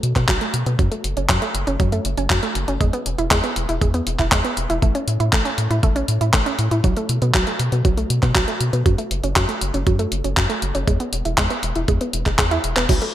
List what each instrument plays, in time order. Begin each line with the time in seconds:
0.03 analog synth bass B2, closed hi-hat
0.16 analog synth bass B2, synth arpeggio sound B3, kick, clap, closed hi-hat
0.28 analog synth bass B1, synth arpeggio sound F#3, kick, clap, closed hi-hat
0.41 synth arpeggio sound A3, closed hi-hat
0.54 analog synth bass B2, closed hi-hat
0.66 analog synth bass B2, synth arpeggio sound B3, closed hi-hat
0.79 analog synth bass F#2, synth arpeggio sound F#3, kick, closed hi-hat
0.92 synth arpeggio sound A3, closed hi-hat
1.04 analog synth bass F#1, closed hi-hat
1.17 analog synth bass F#1, synth arpeggio sound C#4, closed hi-hat
1.29 analog synth bass F#2, synth arpeggio sound F#3, kick, clap, closed hi-hat
1.42 synth arpeggio sound A3, closed hi-hat
1.54 analog synth bass F#1, closed hi-hat
1.67 analog synth bass F#1, synth arpeggio sound C#4, closed hi-hat
1.80 analog synth bass F#2, synth arpeggio sound F#3, kick, closed hi-hat
1.92 synth arpeggio sound A3, closed hi-hat
2.05 analog synth bass F#1, closed hi-hat
2.17 analog synth bass F#1, synth arpeggio sound C#4, closed hi-hat
2.30 analog synth bass F#2, synth arpeggio sound F#3, kick, clap, closed hi-hat
2.43 synth arpeggio sound A3, closed hi-hat
2.55 analog synth bass F#1, closed hi-hat
2.68 analog synth bass F#1, synth arpeggio sound C#4, closed hi-hat
2.81 analog synth bass E2, synth arpeggio sound G#3, kick, closed hi-hat
2.93 synth arpeggio sound B3, closed hi-hat
3.06 analog synth bass E1, closed hi-hat
3.18 analog synth bass E1, synth arpeggio sound E4, closed hi-hat
3.31 analog synth bass E2, synth arpeggio sound G#3, kick, clap, closed hi-hat
3.44 synth arpeggio sound B3, closed hi-hat
3.56 analog synth bass E1, closed hi-hat
3.69 analog synth bass E1, synth arpeggio sound E4, closed hi-hat
3.81 analog synth bass E2, synth arpeggio sound G#3, kick, closed hi-hat
3.94 synth arpeggio sound B3, closed hi-hat
4.07 analog synth bass E1, closed hi-hat
4.19 analog synth bass E1, synth arpeggio sound E4, kick, clap, closed hi-hat
4.32 analog synth bass E2, synth arpeggio sound G#3, kick, clap, closed hi-hat
4.45 synth arpeggio sound B3, closed hi-hat
4.57 analog synth bass E1, closed hi-hat
4.70 analog synth bass E1, synth arpeggio sound E4, closed hi-hat
4.82 analog synth bass A1, synth arpeggio sound A3, kick, closed hi-hat
4.95 synth arpeggio sound C#4, closed hi-hat
5.07 analog synth bass A2, closed hi-hat
5.20 analog synth bass A2, synth arpeggio sound E4, closed hi-hat
5.33 analog synth bass A1, synth arpeggio sound A3, kick, clap, closed hi-hat
5.45 synth arpeggio sound C#4, closed hi-hat
5.58 analog synth bass A2, closed hi-hat
5.71 analog synth bass A2, synth arpeggio sound E4, closed hi-hat
5.83 analog synth bass A1, synth arpeggio sound A3, kick, closed hi-hat
5.96 synth arpeggio sound C#4, closed hi-hat
6.08 analog synth bass A2, closed hi-hat
6.21 analog synth bass A2, synth arpeggio sound E4, closed hi-hat
6.33 analog synth bass A1, synth arpeggio sound A3, kick, clap, closed hi-hat
6.46 synth arpeggio sound C#4, closed hi-hat
6.59 analog synth bass A2, closed hi-hat
6.71 analog synth bass A2, synth arpeggio sound E4, closed hi-hat
6.84 analog synth bass B1, synth arpeggio sound F#3, kick, closed hi-hat
6.97 synth arpeggio sound A3, closed hi-hat
7.09 analog synth bass B2, closed hi-hat
7.22 analog synth bass B2, synth arpeggio sound B3, closed hi-hat
7.34 analog synth bass B1, synth arpeggio sound F#3, kick, clap, closed hi-hat
7.47 synth arpeggio sound A3, closed hi-hat
7.59 analog synth bass B2, closed hi-hat
7.72 analog synth bass B2, synth arpeggio sound B3, closed hi-hat
7.85 analog synth bass B1, synth arpeggio sound F#3, kick, closed hi-hat
7.97 synth arpeggio sound A3, closed hi-hat
8.10 analog synth bass B2, closed hi-hat
8.23 analog synth bass B2, synth arpeggio sound B3, kick, clap, closed hi-hat
8.35 analog synth bass B1, synth arpeggio sound F#3, kick, clap, closed hi-hat
8.48 synth arpeggio sound A3, closed hi-hat
8.61 analog synth bass B2, closed hi-hat
8.73 analog synth bass B2, synth arpeggio sound B3, closed hi-hat
8.86 analog synth bass F#2, synth arpeggio sound F#3, kick, closed hi-hat
8.98 synth arpeggio sound A3, closed hi-hat
9.11 analog synth bass F#1, closed hi-hat
9.23 analog synth bass F#1, synth arpeggio sound C#4, closed hi-hat
9.36 analog synth bass F#2, synth arpeggio sound F#3, kick, clap, closed hi-hat
9.49 synth arpeggio sound A3, closed hi-hat
9.61 analog synth bass F#1, closed hi-hat
9.74 analog synth bass F#1, synth arpeggio sound C#4, closed hi-hat
9.87 analog synth bass F#2, synth arpeggio sound F#3, kick, closed hi-hat
9.99 synth arpeggio sound A3, closed hi-hat
10.12 analog synth bass F#1, closed hi-hat
10.24 analog synth bass F#1, synth arpeggio sound C#4, closed hi-hat
10.37 analog synth bass F#2, synth arpeggio sound F#3, kick, clap, closed hi-hat
10.49 synth arpeggio sound A3, closed hi-hat
10.62 analog synth bass F#1, closed hi-hat
10.75 analog synth bass F#1, synth arpeggio sound C#4, closed hi-hat
10.87 analog synth bass E2, synth arpeggio sound G#3, kick, closed hi-hat
11.00 synth arpeggio sound B3, closed hi-hat
11.12 analog synth bass E1, closed hi-hat
11.25 analog synth bass E1, synth arpeggio sound E4, closed hi-hat
11.38 analog synth bass E2, synth arpeggio sound G#3, kick, clap, closed hi-hat
11.50 synth arpeggio sound B3, closed hi-hat
11.63 analog synth bass E1, closed hi-hat
11.75 analog synth bass E1, synth arpeggio sound E4, closed hi-hat
11.88 analog synth bass E2, synth arpeggio sound G#3, kick, closed hi-hat
12.01 synth arpeggio sound B3, closed hi-hat
12.13 analog synth bass E1, closed hi-hat
12.26 analog synth bass E1, synth arpeggio sound G#3, kick, clap, closed hi-hat
12.39 analog synth bass E2, synth arpeggio sound G#4, kick, clap, closed hi-hat
12.51 synth arpeggio sound E4, closed hi-hat
12.64 analog synth bass E1, closed hi-hat
12.76 analog synth bass E1, synth arpeggio sound B3, clap, closed hi-hat
12.89 analog synth bass B1, synth arpeggio sound F#3, kick, closed hi-hat, crash, tambourine
13.02 synth arpeggio sound A3, closed hi-hat